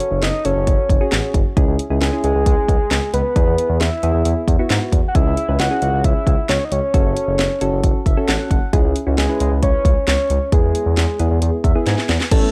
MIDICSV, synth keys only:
0, 0, Header, 1, 2, 480
1, 0, Start_track
1, 0, Key_signature, 4, "minor"
1, 0, Tempo, 447761
1, 1682, Time_signature, 4, 2, 24, 8
1, 13415, End_track
2, 0, Start_track
2, 0, Title_t, "Synth keys"
2, 0, Program_c, 0, 88
2, 0, Note_on_c, 0, 61, 73
2, 0, Note_on_c, 0, 66, 65
2, 0, Note_on_c, 0, 69, 79
2, 247, Note_off_c, 0, 61, 0
2, 247, Note_off_c, 0, 66, 0
2, 247, Note_off_c, 0, 69, 0
2, 481, Note_on_c, 0, 61, 70
2, 481, Note_on_c, 0, 69, 77
2, 482, Note_on_c, 0, 66, 63
2, 886, Note_off_c, 0, 61, 0
2, 886, Note_off_c, 0, 66, 0
2, 886, Note_off_c, 0, 69, 0
2, 1080, Note_on_c, 0, 66, 80
2, 1081, Note_on_c, 0, 61, 89
2, 1081, Note_on_c, 0, 68, 96
2, 1485, Note_off_c, 0, 66, 0
2, 1486, Note_off_c, 0, 61, 0
2, 1486, Note_off_c, 0, 68, 0
2, 1681, Note_on_c, 0, 64, 77
2, 1681, Note_on_c, 0, 68, 97
2, 1682, Note_on_c, 0, 61, 86
2, 1924, Note_off_c, 0, 61, 0
2, 1924, Note_off_c, 0, 64, 0
2, 1924, Note_off_c, 0, 68, 0
2, 2041, Note_on_c, 0, 64, 67
2, 2042, Note_on_c, 0, 61, 70
2, 2042, Note_on_c, 0, 68, 77
2, 2203, Note_off_c, 0, 61, 0
2, 2203, Note_off_c, 0, 64, 0
2, 2203, Note_off_c, 0, 68, 0
2, 2282, Note_on_c, 0, 61, 72
2, 2282, Note_on_c, 0, 64, 65
2, 2282, Note_on_c, 0, 68, 82
2, 2929, Note_off_c, 0, 61, 0
2, 2929, Note_off_c, 0, 64, 0
2, 2929, Note_off_c, 0, 68, 0
2, 3601, Note_on_c, 0, 59, 72
2, 3601, Note_on_c, 0, 64, 66
2, 3602, Note_on_c, 0, 68, 79
2, 4087, Note_off_c, 0, 59, 0
2, 4087, Note_off_c, 0, 64, 0
2, 4087, Note_off_c, 0, 68, 0
2, 4322, Note_on_c, 0, 64, 64
2, 4322, Note_on_c, 0, 68, 78
2, 4323, Note_on_c, 0, 59, 69
2, 4726, Note_off_c, 0, 64, 0
2, 4726, Note_off_c, 0, 68, 0
2, 4727, Note_off_c, 0, 59, 0
2, 4922, Note_on_c, 0, 59, 83
2, 4922, Note_on_c, 0, 64, 77
2, 4922, Note_on_c, 0, 66, 95
2, 5326, Note_off_c, 0, 59, 0
2, 5326, Note_off_c, 0, 64, 0
2, 5326, Note_off_c, 0, 66, 0
2, 5521, Note_on_c, 0, 61, 71
2, 5521, Note_on_c, 0, 64, 68
2, 5521, Note_on_c, 0, 68, 78
2, 5764, Note_off_c, 0, 61, 0
2, 5764, Note_off_c, 0, 64, 0
2, 5764, Note_off_c, 0, 68, 0
2, 5881, Note_on_c, 0, 61, 71
2, 5881, Note_on_c, 0, 64, 67
2, 5881, Note_on_c, 0, 71, 81
2, 6043, Note_off_c, 0, 61, 0
2, 6043, Note_off_c, 0, 64, 0
2, 6043, Note_off_c, 0, 71, 0
2, 6120, Note_on_c, 0, 61, 74
2, 6121, Note_on_c, 0, 64, 65
2, 6121, Note_on_c, 0, 68, 79
2, 6768, Note_off_c, 0, 61, 0
2, 6768, Note_off_c, 0, 64, 0
2, 6768, Note_off_c, 0, 68, 0
2, 7439, Note_on_c, 0, 61, 74
2, 7439, Note_on_c, 0, 66, 65
2, 7439, Note_on_c, 0, 69, 81
2, 7926, Note_off_c, 0, 61, 0
2, 7926, Note_off_c, 0, 66, 0
2, 7926, Note_off_c, 0, 69, 0
2, 8160, Note_on_c, 0, 61, 84
2, 8160, Note_on_c, 0, 66, 76
2, 8160, Note_on_c, 0, 69, 89
2, 8565, Note_off_c, 0, 61, 0
2, 8565, Note_off_c, 0, 66, 0
2, 8565, Note_off_c, 0, 69, 0
2, 8640, Note_on_c, 0, 76, 69
2, 8760, Note_on_c, 0, 69, 97
2, 8761, Note_on_c, 0, 61, 87
2, 8761, Note_on_c, 0, 66, 76
2, 8864, Note_off_c, 0, 76, 0
2, 8880, Note_on_c, 0, 78, 72
2, 9104, Note_off_c, 0, 78, 0
2, 9120, Note_on_c, 0, 78, 65
2, 9165, Note_off_c, 0, 69, 0
2, 9166, Note_off_c, 0, 61, 0
2, 9166, Note_off_c, 0, 66, 0
2, 9344, Note_off_c, 0, 78, 0
2, 9359, Note_on_c, 0, 61, 86
2, 9360, Note_on_c, 0, 64, 81
2, 9360, Note_on_c, 0, 68, 94
2, 9603, Note_off_c, 0, 61, 0
2, 9603, Note_off_c, 0, 64, 0
2, 9603, Note_off_c, 0, 68, 0
2, 9719, Note_on_c, 0, 64, 64
2, 9719, Note_on_c, 0, 66, 81
2, 9720, Note_on_c, 0, 61, 74
2, 9882, Note_off_c, 0, 61, 0
2, 9882, Note_off_c, 0, 64, 0
2, 9882, Note_off_c, 0, 66, 0
2, 9961, Note_on_c, 0, 61, 76
2, 9961, Note_on_c, 0, 64, 65
2, 9961, Note_on_c, 0, 71, 81
2, 10608, Note_off_c, 0, 61, 0
2, 10608, Note_off_c, 0, 64, 0
2, 10608, Note_off_c, 0, 71, 0
2, 11280, Note_on_c, 0, 64, 66
2, 11281, Note_on_c, 0, 59, 71
2, 11281, Note_on_c, 0, 68, 81
2, 11766, Note_off_c, 0, 59, 0
2, 11766, Note_off_c, 0, 64, 0
2, 11766, Note_off_c, 0, 68, 0
2, 12001, Note_on_c, 0, 59, 84
2, 12002, Note_on_c, 0, 64, 79
2, 12002, Note_on_c, 0, 68, 90
2, 12406, Note_off_c, 0, 59, 0
2, 12406, Note_off_c, 0, 64, 0
2, 12406, Note_off_c, 0, 68, 0
2, 12482, Note_on_c, 0, 76, 65
2, 12601, Note_on_c, 0, 59, 84
2, 12601, Note_on_c, 0, 64, 81
2, 12601, Note_on_c, 0, 68, 96
2, 12705, Note_off_c, 0, 76, 0
2, 12722, Note_on_c, 0, 80, 72
2, 13006, Note_off_c, 0, 59, 0
2, 13006, Note_off_c, 0, 64, 0
2, 13006, Note_off_c, 0, 68, 0
2, 13168, Note_off_c, 0, 80, 0
2, 13202, Note_on_c, 0, 61, 75
2, 13202, Note_on_c, 0, 64, 68
2, 13202, Note_on_c, 0, 69, 84
2, 13415, Note_off_c, 0, 61, 0
2, 13415, Note_off_c, 0, 64, 0
2, 13415, Note_off_c, 0, 69, 0
2, 13415, End_track
0, 0, End_of_file